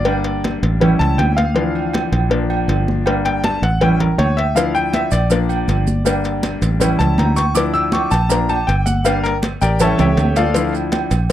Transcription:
Already playing: fingered electric bass G1, grand piano D5
0.05 grand piano G3 A#3 D4, cowbell, low agogo
0.24 cowbell, high conga
0.44 cowbell, high conga, low agogo
0.63 fingered electric bass A1, cowbell, high conga
0.80 grand piano G3 C#4 E4, cowbell, high conga, low conga, low agogo
0.99 fingered electric bass C#2, grand piano A5, cowbell, high conga
1.18 fingered electric bass D2, grand piano G5, cowbell, high conga, low agogo
1.37 grand piano F5, cowbell, high conga, low agogo
1.54 grand piano E3 F3 D4, cowbell, high conga
1.75 high conga, low agogo
1.93 cowbell, high conga, low agogo
2.12 fingered electric bass A#1, cowbell, high conga, low agogo
2.30 grand piano F3 A#3 D4, cowbell, high conga
2.50 high conga, low agogo
2.68 fingered electric bass G1, cowbell, high conga, low timbale, low agogo
2.88 high conga
3.06 grand piano G3 A#3 D4, cowbell, low agogo
3.25 grand piano G5, cowbell, high conga
3.44 grand piano A5, cowbell, high conga, low agogo
3.62 fingered electric bass A1, grand piano F#5, cowbell, high conga
3.81 grand piano G3 C#4 E4 G5, cowbell, high conga, low conga, low agogo
4.00 grand piano A#4, cowbell, high conga, low conga
4.18 fingered electric bass D2, grand piano C#5, cowbell, high conga, low agogo
4.37 grand piano E5, cowbell, low agogo
4.55 grand piano F3 D4 E4 F5, cowbell, high conga, maracas
4.75 grand piano G5, high conga, low agogo, maracas
4.93 grand piano E5, cowbell, high conga, low agogo, maracas
5.11 fingered electric bass A#1, grand piano D5, cowbell, high conga, low agogo, maracas
5.30 grand piano F3 A#3 D4, cowbell, high conga, maracas
5.49 high conga, low agogo, maracas
5.68 fingered electric bass G1, cowbell, high conga, low agogo, maracas
5.87 high conga, maracas
6.05 grand piano G3 A#3 D4, cowbell, low agogo, maracas
6.24 cowbell, high conga, maracas
6.43 cowbell, high conga, low agogo, maracas
6.62 fingered electric bass A1, cowbell, high conga, maracas
6.80 grand piano G3 C#4 E4, cowbell, high conga, low conga, low agogo, maracas
6.99 fingered electric bass C#2, grand piano A5, cowbell, high conga, low conga, maracas
7.18 fingered electric bass D2, grand piano A#5, cowbell, high conga, low agogo, maracas
7.36 grand piano C#6, cowbell, high conga, low agogo, maracas
7.54 grand piano F3 D4 E4 D6, cowbell, high conga, maracas
7.74 grand piano E6, high conga, low agogo, maracas
7.92 grand piano C#6, cowbell, high conga, low agogo, maracas
8.11 fingered electric bass A#1, grand piano A5, cowbell, high conga, low agogo, maracas
8.29 grand piano F3 A#3 D4 A#5, cowbell, high conga, maracas
8.49 grand piano A5, high conga, low agogo, maracas
8.67 fingered electric bass G1, grand piano G5, cowbell, high conga, low agogo, maracas
8.86 grand piano F#5, high conga, maracas
9.04 grand piano G3 A#3 D4 F5, cowbell, high conga, low agogo, maracas
9.23 grand piano A#4, cowbell, high conga, maracas
9.42 cowbell, high conga, low agogo, maracas
9.61 fingered electric bass A1, grand piano G4 A#4 D5 G5, cowbell, high conga, maracas
9.80 grand piano G3 C#4 E4 A4 C#5 E5 A5, cowbell, high conga, low conga, low agogo, maracas
9.98 fingered electric bass C#2, grand piano G4 C#5 E5 G5, cowbell, high conga, low conga, high timbale, maracas
10.17 fingered electric bass D2, cowbell, high conga, high timbale, low agogo, maracas
10.36 grand piano F4 A4 D5 F5, cowbell, high conga, low timbale, low agogo, maracas
10.54 grand piano F3 D4 E4, cowbell, high conga, maracas
10.73 high conga, low agogo, maracas
10.92 cowbell, high conga, low agogo, maracas
11.11 fingered electric bass A#1, cowbell, high conga, low agogo, maracas

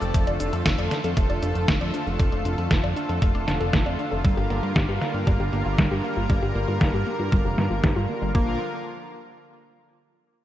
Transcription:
Already playing: analog synth pad F3 A3 C4 A4 D5
0.02 analog synth bass F1, synth arpeggio sound A4, cabasa
0.14 analog synth bass F1, analog synth pad D3 F4, synth arpeggio sound A3, kick, closed hi-hat, cabasa
0.27 analog synth bass F1, synth arpeggio sound D5, closed hi-hat
0.40 analog synth bass F1, synth arpeggio sound D4, closed hi-hat, cabasa
0.53 analog synth bass F2, synth arpeggio sound A4, closed hi-hat, cabasa
0.66 analog synth bass F1, synth arpeggio sound A3, kick, snare, closed hi-hat, cabasa
0.78 analog synth bass F2, synth arpeggio sound D5, closed hi-hat
0.91 synth arpeggio sound D4, snare, closed hi-hat, cabasa
1.04 analog synth bass F2, synth arpeggio sound A4, closed hi-hat, cabasa
1.17 analog synth bass F1, synth arpeggio sound A3, kick, closed hi-hat, cabasa
1.30 analog synth bass F1, synth arpeggio sound D5, closed hi-hat
1.42 analog synth bass F1, synth arpeggio sound D4, closed hi-hat, cabasa
1.55 analog synth bass F1, synth arpeggio sound A4, closed hi-hat, cabasa
1.68 analog synth bass F1, synth arpeggio sound A3, kick, snare, closed hi-hat, cabasa
1.81 analog synth bass F2, synth arpeggio sound D5, closed hi-hat
1.94 synth arpeggio sound D4, closed hi-hat, cabasa
2.07 analog synth bass F1, synth arpeggio sound A4, cabasa
2.19 analog synth bass F1, synth arpeggio sound A3, kick, closed hi-hat, cabasa
2.32 analog synth bass F1, synth arpeggio sound D5, closed hi-hat
2.45 analog synth bass F1, synth arpeggio sound D4, closed hi-hat, cabasa
2.58 analog synth bass F2, synth arpeggio sound A4, closed hi-hat, cabasa
2.71 analog synth bass F1, synth arpeggio sound A3, kick, snare, closed hi-hat, cabasa
2.84 analog synth bass F2, synth arpeggio sound D5, closed hi-hat
2.96 synth arpeggio sound D4, closed hi-hat, cabasa
3.09 analog synth bass F2, synth arpeggio sound A4, closed hi-hat, cabasa
3.22 analog synth bass F1, synth arpeggio sound A3, kick, closed hi-hat, cabasa
3.35 analog synth bass F1, synth arpeggio sound D5, closed hi-hat
3.47 analog synth bass F1, synth arpeggio sound D4, snare, closed hi-hat, cabasa
3.60 analog synth bass F1, synth arpeggio sound A4, closed hi-hat, cabasa
3.73 analog synth bass F1, synth arpeggio sound A3, kick, snare, closed hi-hat, cabasa
3.86 analog synth bass F2, synth arpeggio sound D5, closed hi-hat
3.99 synth arpeggio sound D4, closed hi-hat, cabasa
4.12 analog synth bass F1, synth arpeggio sound A4, cabasa
4.24 analog synth bass G1, synth arpeggio sound G3, analog synth pad G3 A#3 A#4, kick, closed hi-hat, cabasa
4.37 analog synth bass G1, synth arpeggio sound G4, closed hi-hat
4.50 analog synth bass G1, synth arpeggio sound A#3, closed hi-hat, cabasa
4.63 analog synth bass G2, synth arpeggio sound F4, closed hi-hat, cabasa
4.76 analog synth bass G1, synth arpeggio sound G3, kick, snare, closed hi-hat, cabasa
4.89 analog synth bass G2, synth arpeggio sound G4, closed hi-hat
5.01 synth arpeggio sound A#3, snare, closed hi-hat, cabasa
5.14 analog synth bass G2, synth arpeggio sound F4, closed hi-hat, cabasa
5.27 analog synth bass G1, synth arpeggio sound G3, kick, closed hi-hat, cabasa
5.40 analog synth bass G1, synth arpeggio sound G4, closed hi-hat
5.53 analog synth bass G1, synth arpeggio sound A#3, closed hi-hat, cabasa
5.65 analog synth bass G1, synth arpeggio sound F4, closed hi-hat, cabasa
5.78 analog synth bass G1, synth arpeggio sound G3, kick, snare, closed hi-hat
5.91 analog synth bass G2, synth arpeggio sound G4, closed hi-hat
6.04 synth arpeggio sound A#3, closed hi-hat, cabasa
6.17 analog synth bass G1, synth arpeggio sound F4, cabasa
6.30 analog synth bass G1, synth arpeggio sound G3, kick, closed hi-hat
6.42 analog synth bass G1, synth arpeggio sound G4, closed hi-hat, cabasa
6.55 analog synth bass G1, synth arpeggio sound A#3, closed hi-hat, cabasa
6.68 analog synth bass G2, synth arpeggio sound F4, closed hi-hat, cabasa
6.81 analog synth bass G1, synth arpeggio sound G3, kick, snare, closed hi-hat
6.94 analog synth bass G2, synth arpeggio sound G4, closed hi-hat, cabasa
7.07 synth arpeggio sound A#3, closed hi-hat, cabasa
7.19 analog synth bass G2, synth arpeggio sound F4, closed hi-hat
7.32 analog synth bass G1, synth arpeggio sound G3, kick, closed hi-hat
7.45 analog synth bass F1, synth arpeggio sound G4, closed hi-hat, cabasa
7.58 analog synth bass G2, synth arpeggio sound G3, snare, closed hi-hat, cabasa
7.71 analog synth bass G1, synth arpeggio sound F4, closed hi-hat, cabasa
7.83 analog synth bass G1, synth arpeggio sound D4, kick, snare, closed hi-hat
7.96 analog synth bass G2, synth arpeggio sound F4, closed hi-hat
8.09 synth arpeggio sound A#3, closed hi-hat, cabasa
8.22 analog synth bass G1, synth arpeggio sound G3, closed hi-hat, cabasa
8.35 analog synth bass A#1, analog synth pad D3 F3 A#3 F4 A#4, synth arpeggio sound A#3, kick

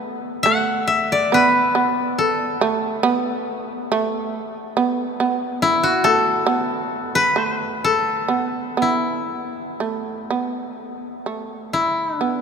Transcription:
Already playing: shamisen B3, koto B4
0.43 shamisen A3, koto F#5
0.87 koto E5
1.12 koto D5
1.32 shamisen B3, koto B4
1.75 shamisen B3
2.18 koto A4
2.61 shamisen A3
3.03 shamisen B3
3.92 shamisen A3
4.77 shamisen B3
5.20 shamisen B3
5.62 koto E4
5.83 koto F#4
6.04 shamisen A3, koto A4
6.47 shamisen B3
7.15 koto B4
7.36 shamisen A3
7.84 koto A4
8.28 shamisen B3
8.77 shamisen B3
8.82 koto E4
9.80 shamisen A3
10.30 shamisen B3
11.26 shamisen A3
11.73 koto E4
12.15 koto D4
12.21 shamisen B3

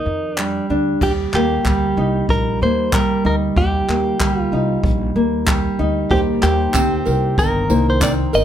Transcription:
Already playing: nylon-string guitar D#3 D#4 A#4, clean electric guitar D#4
0.06 upright bass F2
0.36 nylon-string guitar G3, clean electric guitar D4, clap
0.70 upright bass D2, nylon-string guitar D4
1.01 upright bass D#2, nylon-string guitar G4, clean electric guitar G4, kick, crash
1.33 upright bass D#2, nylon-string guitar A#3, clean electric guitar G4, clap
1.65 upright bass D2, nylon-string guitar G3, kick, clap
1.97 upright bass C2, nylon-string guitar D#4
2.29 upright bass A#1, clean electric guitar A#4, kick
2.61 upright bass D#2, nylon-string guitar A#3, clean electric guitar C5
2.93 nylon-string guitar G3, clean electric guitar A#4, kick, clap
3.25 upright bass D2, nylon-string guitar D#4, clean electric guitar A#4
3.56 upright bass D#2, clean electric guitar G4, nylon-string guitar G4, kick
3.88 upright bass D#2, nylon-string guitar A#3, clap
4.20 upright bass D2, nylon-string guitar G3, kick, clap
4.42 clean electric guitar F4
4.52 upright bass C2, nylon-string guitar D#4
4.83 upright bass A#1, kick
5.16 upright bass D#2, nylon-string guitar A#3
5.47 nylon-string guitar G3, kick, clap
5.79 upright bass D2, nylon-string guitar D#4
6.10 upright bass D#2, felt piano A#3 D#4 C5, clean electric guitar G4, nylon-string guitar G4, kick
6.42 upright bass D#2, nylon-string guitar A#3, clean electric guitar G4, clap, tambourine
6.74 upright bass D2, nylon-string guitar C4, kick, clap, tambourine
7.05 upright bass C2, nylon-string guitar A#4, tambourine
7.38 upright bass G1, nylon-string guitar D#3, clean electric guitar A#4, kick, tambourine
7.68 upright bass C2, felt piano A#3 D#4 C5, nylon-string guitar A#3, tambourine
7.90 clean electric guitar C5
8.01 nylon-string guitar C4, clean electric guitar D5, kick, clap, tambourine
8.33 upright bass G1, nylon-string guitar A#4, clean electric guitar D#5, tambourine

